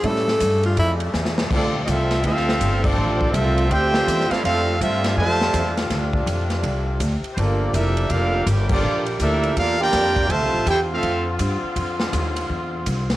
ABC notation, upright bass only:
X:1
M:4/4
L:1/8
Q:"Swing" 1/4=164
K:Dm
V:1 name="Upright bass" clef=bass
A,,2 G,,2 F,,2 E,,2 | D,,2 C,,2 D,,2 G,,,2 | A,,,2 C,,2 D,,2 E,, z | F,,2 G,,2 F,,2 E,,2 |
D,,2 F,,2 C,,2 D,, z | G,,,2 F,,,2 F,,,2 G,,,2 | B,,,2 D,,2 E,,2 F,,2 | (3D,, C,, A,,, E,,2 F,,2 G,, z |
F,,2 _E,,2 =E,,2 C,,2 |]